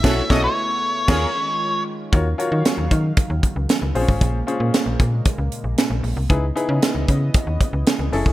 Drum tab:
CC |x-------x-------|----------------|----------------|----------------|
HH |----------------|x-x-x-x-x-x-x-o-|x-x-x-x-x-x-x-o-|x-x-x-x-x-x-x-o-|
SD |o-o-----o-------|----o-------o---|----o-------o---|----o-------o---|
BD |o-o-----o-------|o-----o-o-o----o|o-----o-o-------|o-----o-o-o----o|